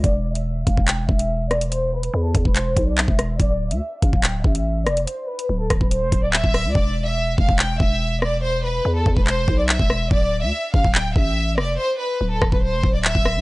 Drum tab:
HH |x--x--x-x--x--xx|x--x--x-x-x---x-|x--x--x-x--x--xx|x--x--x-x-x---o-|
CP |--------x-------|--------x---x---|--------x-------|------------x---|
SD |--------------r-|--------------r-|--------------r-|------r-------r-|
BD |o-----oo--o-----|------oo--o--o--|o-----oo--o-----|------oo--o--o--|

HH |----------------|----------------|----------------|----------------|
CP |--------x-------|--------x---x---|--------x-------|------------x---|
SD |--------------r-|--------------r-|--------------r-|------r-------r-|
BD |o-----oo--o-----|------oo--o--o--|o-----oo--o-----|------oo--o--o--|